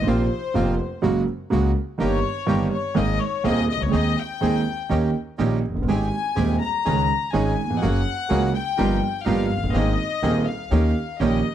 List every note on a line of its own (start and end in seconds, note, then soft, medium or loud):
0.02 0.07 A1 medium
0.07 0.28 A#1 medium
0.07 0.27 A#2 medium
0.07 0.27 C3 medium
0.07 0.28 F3 medium
0.07 0.27 A#3 medium
0.07 0.27 A#3 soft
0.07 0.27 C4 medium
0.07 0.27 F4 medium
0.07 0.28 F4 medium
0.07 1.04 C5 medium
0.54 0.75 F1 medium
0.54 0.76 F1 medium
0.54 0.75 F2 medium
0.54 0.75 C3 medium
0.54 0.75 F3 medium
0.54 0.75 A#3 medium
0.54 0.76 A#3 medium
0.54 0.75 C4 medium
0.54 0.75 F4 medium
1.02 1.24 F#1 medium
1.02 1.23 F#2 medium
1.02 1.23 C#3 medium
1.02 1.23 F#3 medium
1.02 1.23 G#3 medium
1.02 1.23 A#3 medium
1.02 1.23 F#4 medium
1.50 1.71 C#2 medium
1.50 1.73 C#2 medium
1.50 1.71 C#3 medium
1.50 1.71 G#3 medium
1.50 1.72 G#3 medium
1.50 1.71 A#3 medium
1.50 1.72 A#3 medium
1.50 1.72 F#4 medium
1.98 2.20 G1 medium
1.98 2.21 G1 medium
1.98 2.20 G2 medium
1.98 2.19 D#3 medium
1.98 2.20 G3 medium
1.98 2.20 A#3 medium
1.98 2.20 D#4 medium
1.98 2.20 G4 medium
2.02 2.69 C#5 medium
2.46 2.68 G1 medium
2.46 2.69 G1 medium
2.46 2.68 G2 medium
2.46 2.68 D#3 medium
2.46 2.68 G3 medium
2.46 2.68 A#3 medium
2.46 2.68 D#4 medium
2.46 2.68 G4 medium
2.73 2.95 C#5 medium
2.94 3.16 G#1 medium
2.94 3.17 G#1 medium
2.94 3.16 G#2 medium
2.94 3.16 D#3 medium
2.94 3.16 A#3 medium
2.94 3.16 C4 medium
2.94 3.16 G#4 medium
2.94 3.17 G#4 medium
2.94 3.21 D#5 medium
3.21 3.45 C#5 medium
3.44 3.65 D#1 medium
3.44 3.65 D#2 medium
3.44 3.66 D#2 medium
3.44 3.65 D#3 medium
3.44 3.65 A#3 medium
3.44 3.65 C4 medium
3.44 3.65 G#4 medium
3.44 3.69 D#5 medium
3.70 3.81 D#5 medium
3.75 3.81 C2 soft
3.80 3.87 C#2 medium
3.80 3.88 C#2 medium
3.80 3.94 C#5 medium
3.87 3.93 D2 medium
3.91 4.13 D#2 medium
3.91 4.14 D#2 medium
3.91 4.13 D#3 medium
3.91 4.13 G#3 soft
3.91 4.13 C4 medium
3.91 4.13 D#4 medium
3.91 4.13 G#4 medium
3.91 4.18 D#5 medium
4.18 5.15 G5 medium
4.41 4.62 D#2 medium
4.41 4.63 D#2 medium
4.41 4.62 D#3 medium
4.41 4.62 G#3 medium
4.41 4.62 C4 medium
4.41 4.62 D#4 medium
4.41 4.62 G#4 medium
4.89 5.11 D#2 medium
4.89 5.10 D#3 medium
4.89 5.11 A#3 medium
4.89 5.10 C#4 medium
4.89 5.11 C#4 medium
4.89 5.11 D#4 medium
4.89 5.11 G4 medium
5.38 5.60 A#1 medium
5.38 5.60 A#2 medium
5.38 5.59 D#3 medium
5.38 5.60 A#3 medium
5.38 5.59 C#4 medium
5.38 5.60 C#4 medium
5.38 5.59 D#4 medium
5.38 5.59 G4 medium
5.38 5.60 G4 medium
5.69 5.76 F1 soft
5.75 5.81 F#1 medium
5.75 5.82 F#1 medium
5.82 5.88 G1 medium
5.88 6.09 G#1 medium
5.88 6.09 G#2 medium
5.88 6.08 D#3 medium
5.88 6.09 G#3 medium
5.88 6.08 C4 medium
5.88 6.09 C4 soft
5.88 6.08 G4 medium
5.88 6.09 G4 medium
5.88 6.08 G#4 medium
5.88 6.57 G#5 medium
6.35 6.57 D#1 medium
6.35 6.57 D#2 medium
6.35 6.57 D#3 medium
6.35 6.57 G#3 medium
6.35 6.56 C4 medium
6.35 6.57 C4 medium
6.35 6.56 G4 medium
6.35 6.57 G4 medium
6.35 6.56 G#4 medium
6.61 7.34 A#5 medium
6.85 7.06 C#2 medium
6.85 7.06 C#3 medium
6.85 7.06 D#3 medium
6.85 7.06 G#3 medium
6.85 7.05 C#4 medium
6.85 7.06 C#4 medium
6.85 7.05 D#4 medium
6.85 7.05 G#4 medium
6.85 7.07 G#4 medium
7.33 7.54 G#1 medium
7.33 7.54 G#2 medium
7.33 7.54 D#3 medium
7.33 7.54 G#3 medium
7.33 7.53 C#4 medium
7.33 7.54 C#4 medium
7.33 7.54 D#4 medium
7.33 7.53 G#4 medium
7.33 7.54 G#4 medium
7.33 7.82 G#5 medium
7.65 7.70 D#2 soft
7.70 7.76 E2 medium
7.77 7.82 F2 medium
7.81 8.03 F#1 medium
7.81 8.03 F#2 medium
7.81 8.03 F#3 medium
7.81 8.02 A#3 medium
7.81 8.03 A#3 medium
7.81 8.03 C#4 medium
7.81 8.02 F#4 medium
7.81 8.02 G#4 medium
7.81 8.03 G#4 medium
7.81 8.54 F#5 loud
8.29 8.51 C#2 medium
8.29 8.51 C#3 medium
8.29 8.51 F#3 medium
8.29 8.50 A#3 medium
8.29 8.51 A#3 medium
8.29 8.51 C#4 medium
8.29 8.50 F#4 medium
8.29 8.50 G#4 medium
8.29 8.51 G#4 medium
8.55 9.23 G5 medium
8.77 8.99 G1 medium
8.77 8.99 G2 medium
8.77 8.99 F3 medium
8.77 8.99 A#3 medium
8.77 8.98 D#4 medium
8.77 8.99 D#4 medium
8.77 8.98 F4 medium
8.77 8.98 G4 medium
8.77 8.99 G4 medium
9.25 9.47 G1 medium
9.25 9.47 G2 medium
9.25 9.47 F3 medium
9.25 9.47 A#3 medium
9.25 9.46 D#4 medium
9.25 9.47 D#4 medium
9.25 9.46 F4 medium
9.25 9.46 G4 medium
9.25 9.47 G4 medium
9.25 9.74 F5 medium
9.57 9.63 F1 soft
9.63 9.68 F#1 medium
9.63 9.69 F#1 medium
9.69 9.74 G1 medium
9.69 9.75 G1 medium
9.73 9.95 G#1 medium
9.73 9.96 G#1 medium
9.73 9.96 G#2 medium
9.73 9.96 D#3 medium
9.73 9.94 A#3 medium
9.73 9.96 A#3 medium
9.73 9.94 C4 medium
9.73 9.96 C4 medium
9.73 9.95 G#4 medium
9.73 9.96 G#4 medium
9.73 10.47 D#5 medium
10.22 10.44 D#1 medium
10.22 10.43 D#2 medium
10.22 10.44 D#2 medium
10.22 10.43 D#3 medium
10.22 10.43 A#3 medium
10.22 10.44 A#3 medium
10.22 10.43 C4 medium
10.22 10.44 C4 medium
10.22 10.43 G#4 medium
10.22 10.44 G#4 medium
10.46 11.20 F5 medium
10.70 10.92 D#2 medium
10.70 10.93 D#2 medium
10.70 10.93 D#3 medium
10.70 10.93 A#3 medium
10.70 10.91 C#4 medium
10.70 10.93 C#4 medium
10.70 10.92 D#4 medium
10.70 10.92 G4 medium
10.70 10.93 G4 medium
11.19 11.41 A#1 medium
11.19 11.41 A#2 medium
11.19 11.41 D#3 medium
11.19 11.41 A#3 medium
11.19 11.40 C#4 medium
11.19 11.41 C#4 medium
11.19 11.40 D#4 medium
11.19 11.40 G4 medium
11.19 11.42 G4 medium
11.19 11.55 D#5 medium